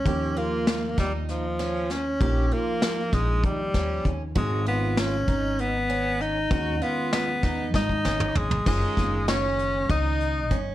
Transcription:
<<
  \new Staff \with { instrumentName = "Clean electric guitar" } { \time 7/8 \key gis \dorian \tempo 4 = 98 r2. r8 | r2. r8 | r2. r8 | r2 dis''4 gis'8 |
gis'4 cis''4 dis''4 r8 | }
  \new Staff \with { instrumentName = "Twelve-string acoustic guitar" } { \time 7/8 \key gis \dorian g'8 eis'4 dis'4 cis'4 | g'8 eis'4 dis'4 cis'4 | fis'8 eis'4 dis'4 cis'4 | fis'8 eis'4 dis'4 cis'4 |
dis'4 cis'4 dis'4 cis'8 | }
  \new Staff \with { instrumentName = "Hollow-body jazz guitar" } { \time 7/8 \key gis \dorian <eis ais dis' g'>2.~ <eis ais dis' g'>8 | <eis ais dis' g'>2.~ <eis ais dis' g'>8 | <dis gis cis' fis'>2.~ <dis gis cis' fis'>8 | <dis gis cis' fis'>2.~ <dis gis cis' fis'>8 |
<dis gis cis' eis'>2.~ <dis gis cis' eis'>8 | }
  \new Staff \with { instrumentName = "Tenor saxophone" } { \time 7/8 \key gis \dorian cis'8 ais4 g8 eis4 cis'8~ | cis'8 ais4 gis8 g4 r8 | gis8 b8 cis'4 b4 dis'8~ | dis'8 b8 b4 dis'4 gis8 |
gis4 cis'4 dis'4 r8 | }
  \new Staff \with { instrumentName = "Upright bass" } { \clef bass \time 7/8 \key gis \dorian dis,4. dis,2 | ais,,8 r4 ais,,8 dis8 dis,8 dis,8 | gis,,4. gis,,2 | dis,8 r4 dis,8 gis,8 gis,,8 gis,,8 |
fis,,16 r16 fis,,4. cis,4 g,,8 | }
  \new DrumStaff \with { instrumentName = "Drums" } \drummode { \time 7/8 <hh bd>8 hh8 <hh sn>8 <hh bd sn>8 <hh sn>8 <hh sn>8 <hh sn>8 | <hh bd>8 hh8 <hh sn>8 <hh bd sn>8 <hh bd>8 <hh bd sn>8 <hh bd>8 | <hh bd>8 hh8 <hh sn>8 <hh bd>8 hh8 hh8 hh8 | <hh bd>8 hh8 <hh sn>8 <hh bd sn>8 <bd sn>16 bd16 sn16 toml16 tomfh16 tomfh16 |
<cymc bd>8 <hh bd sn>8 <hh sn>8 hh8 <hh bd>8 hh8 <hh bd>8 | }
>>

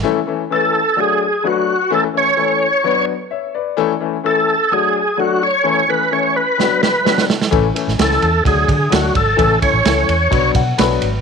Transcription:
<<
  \new Staff \with { instrumentName = "Tonewheel organ" } { \time 4/4 \key a \major \tempo 4 = 128 r4 a'4 gis'4 fis'4 | a'8 cis''2 r4. | r4 a'4 gis'4 fis'8 cis''8~ | cis''8 b'8 cis''8 b'4 b'4 r8 |
r4 a'4 gis'4 fis'8 a'8~ | a'8 cis''2 r4. | }
  \new Staff \with { instrumentName = "Upright piano" } { \time 4/4 \key a \major << { r1 | r2. <cis'' e''>8 <b' d''>8~ | <b' d''>8 r2. r8 | r1 |
r1 | r2 r8 fis''8 b''4 | } \\ { <e a cis' e' a'>8 <e a cis' e' a'>8 <e a cis' e' b'>8 r8 <fis a d' fis' a'>8 r8 <fis a d' fis' b'>8 r8 | <e a cis' e' a'>8 <e a cis' e' a'>8 <e a cis' e' a'>8 r8 <fis b d' fis' b'>8 r4. | <e a cis' e' a'>8 <e a cis' e' a'>8 <e a cis' e' a'>8 r8 <fis a d' fis' a'>8 r8 <fis a d' fis' a'>8 r8 | <e a cis' e' a'>8 <e a cis' e' a'>8 <e a cis' e' a'>8 r8 <fis b d' fis' b'>8 r8 <fis b d' fis' b'>8 r8 |
<e a cis' e' a'>8 <e a cis' e' a'>8 <e a cis' e' a'>8 r8 <fis a d' fis' a'>8 r8 <fis a d' fis' a'>8 r8 | <e a cis' e' a'>8 <e a cis' e' a'>8 <e a cis' e' a'>8 r8 <fis b d' fis' b'>8 r8 <fis b d' fis' b'>8 r8 | } >> }
  \new Staff \with { instrumentName = "Fingered electric bass" } { \clef bass \time 4/4 \key a \major r1 | r1 | r1 | r1 |
a,,8 r16 a,,16 cis,8 e,8 d,8 d8 d,8 gis,,8 | a,,8 r16 a,,16 cis,8 e,8 b,,8 b,8 b,,8 gis,,8 | }
  \new DrumStaff \with { instrumentName = "Drums" } \drummode { \time 4/4 r4 r4 r4 r4 | r4 r4 r4 r4 | r4 r4 r4 r4 | r4 r4 sn8 sn8 sn16 sn16 sn16 sn16 |
<bd cymr>8 cymr16 sn16 <cymr sn>16 sn16 cymr8 <bd cymr>8 <bd cymr>8 <cymr sn>8 <bd cymr>8 | <bd cymr>8 <bd cymr>8 <cymr sn>8 cymr8 <bd cymr>8 <bd cymr>8 <cymr sn>8 cymr8 | }
>>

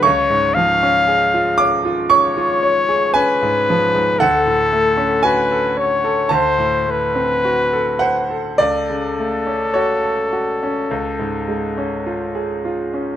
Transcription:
<<
  \new Staff \with { instrumentName = "Trumpet" } { \time 4/4 \key cis \phrygian \tempo 4 = 54 cis''8 eis''4~ eis''16 r16 cis''4 b'4 | a'4 b'8 cis''8 c''8 b'4~ b'16 r16 | a'2.~ a'8 r8 | }
  \new Staff \with { instrumentName = "Grand piano" } { \time 4/4 \key cis \phrygian << { cis'''4. d'''8 cis'''4 gis''4 | fis''4 gis''4 a''4. fis''8 | d''4 cis''2 r4 | } \\ { cis,16 gis,16 eis16 cis'16 gis'16 eis'16 cis''16 eis'16 cis''16 eis'16 cis''16 gis'16 cis'16 gis,16 eis16 gis,16 | d,16 a,16 a16 cis'16 fis'16 a'16 cis''16 a'16 d,16 a,16 a16 c'16 fis'16 a'16 c''16 a'16 | cis,16 cis16 a16 cis'16 fis'16 a'16 fis'16 cis'16 cis,16 gis,16 gis16 cis'16 eis'16 gis'16 eis'16 cis'16 | } >> }
>>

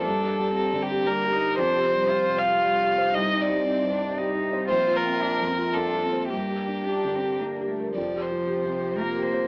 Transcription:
<<
  \new Staff \with { instrumentName = "Violin" } { \time 3/4 \key f \mixolydian \tempo 4 = 115 a'4. g'8 bes'4 | c''4. f''4. | ees''8 d''4. r4 | c''8 bes'4. a'4 |
g'2 r4 | d''8 c''4. bes'8 c''8 | }
  \new Staff \with { instrumentName = "String section" } { \time 3/4 \key f \mixolydian << { <bes d'>2. | <c' c''>2.~ | <c' c''>2.~ | <c' c''>2. |
<d' bes'>2. | <c' c''>2. | } \\ { g'2.~ | g'2.~ | g'2. | f'2. |
g'2. | g'2. | } >> }
  \new Staff \with { instrumentName = "Felt piano" } { \time 3/4 \key f \mixolydian \tuplet 3/2 { g,8 g'8 g8 g'8 d8 g'8 g8 g'8 bes'8 } | \tuplet 3/2 { f,8 g'8 g8 g'8 c8 g'8 g8 g'8 c''8 } | \tuplet 3/2 { c,8 ees'8 g8 ees'8 g,8 ees'8 g8 ees'8 c''8 } | \tuplet 3/2 { bes,,8 f'8 c'8 f'8 f,8 f'8 c'8 f'8 c''8 } |
\tuplet 3/2 { g,8 g'8 d'8 g'8 d8 g'8 d'8 g'8 bes'8 } | \tuplet 3/2 { f,8 g'8 f'8 g'8 c8 g'8 f'8 g'8 c''8 } | }
  \new Staff \with { instrumentName = "Cello" } { \time 3/4 \key f \mixolydian d'4 c'4 bes8 ees'8 | d'8 c'8 f'2 | ees'4 c'8 d'8 ees'4 | f'4 d'8 c'8 d'8 c'8 |
bes4 d'8 c'8 bes8 a8 | f2 bes4 | }
  \new Staff \with { instrumentName = "Sub bass" } { \clef bass \time 3/4 \key f \mixolydian r2. | r2. | r2. | r2. |
r2. | f,,2. | }
>>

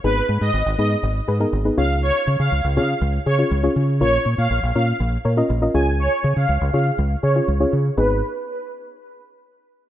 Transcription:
<<
  \new Staff \with { instrumentName = "Supersaw synth" } { \time 4/4 \key gis \dorian \tempo 4 = 121 b'8 r16 dis''8 r16 dis''16 r4. r16 eis''16 r16 | cis''8 r16 eis''8 r16 eis''16 r8. cis''16 r4 r16 | cis''8 r16 eis''8 r16 eis''16 r4. r16 gis''16 r16 | cis''8 r16 eis''8 r16 eis''16 r8. cis''16 r4 r16 |
b'8 r2. r8 | }
  \new Staff \with { instrumentName = "Synth pluck" } { \time 4/4 \key gis \dorian <b dis' gis' b'>8. r8. <b dis' gis' b'>8 r8 <gis' b'>16 <b dis' gis' ais'>16 r16 <b dis' gis' b'>16 <cis' eis' gis' cis''>8~ | <cis' eis' gis' cis''>4 r8 <cis' eis' gis' cis''>8 r8 <gis' cis''>16 <cis' eis' gis' cis''>16 r16 <cis' eis' gis' cis''>8 r16 | <cis' eis' ais' cis''>8. r8. <cis' eis' ais' cis''>8 r8 <ais' cis''>16 <cis' eis' ais' dis''>16 r16 <cis' eis' ais' dis''>16 <cis' eis' gis' cis''>8~ | <cis' eis' gis' cis''>4 r8 <cis' eis' gis' cis''>8 r8 <gis' cis''>16 <cis' eis' gis' cis''>16 r16 <cis' eis' gis' cis''>8 r16 |
<b dis' gis' b'>8 r2. r8 | }
  \new Staff \with { instrumentName = "Fingered electric bass" } { \clef bass \time 4/4 \key gis \dorian gis,,8 gis,16 gis,16 gis,,16 gis,,16 gis,8 gis,,8 gis,8 gis,,8 cis,8~ | cis,8 cis16 cis16 cis,16 cis,16 cis8 cis,8 cis8 cis,8 cis8 | ais,,8 ais,16 ais,16 ais,,16 ais,,16 ais,8 ais,,8 ais,8 ais,,8 cis,8~ | cis,8 cis16 cis16 cis,16 cis,16 cis8 cis,8 cis8 cis,8 cis8 |
gis,,8 r2. r8 | }
>>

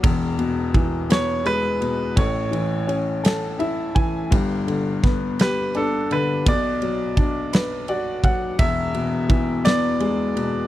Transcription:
<<
  \new Staff \with { instrumentName = "Grand piano" } { \time 6/8 \key e \mixolydian \tempo 4. = 56 r4. cis''8 b'4 | cis''4 r2 | r4. b'8 a'8 b'8 | d''2~ d''8 r8 |
e''4. d''4. | }
  \new Staff \with { instrumentName = "Upright piano" } { \clef bass \time 6/8 \key e \mixolydian <e,, e,>8 b,8 e8 b8 gis8 b,8 | <a,, a,>8 e8 cis'8 a'8 <e' e''>8 <e gis''>8 | <g,, g,>8 d8 b8 g'8 d'8 d8 | <b,, b,>8 fis8 d'8 b'8 <fis' d''>8 <fis fis''>8 |
<e,, e,>8 b,8 e8 b8 gis8 b,8 | }
  \new DrumStaff \with { instrumentName = "Drums" } \drummode { \time 6/8 <bd cymr>8 cymr8 <bd cymr>8 <cymr sn>8 cymr8 cymr8 | <bd cymr>8 cymr8 cymr8 <cymr sn>8 cymr8 <bd cymr>8 | <bd cymr>8 cymr8 <bd cymr sn>8 <cymr sn>8 cymr8 cymr8 | <bd cymr>8 cymr8 <bd cymr>8 <cymr sn>8 cymr8 <bd cymr>8 |
<bd cymr>8 cymr8 <bd cymr>8 <cymr sn>8 cymr8 cymr8 | }
>>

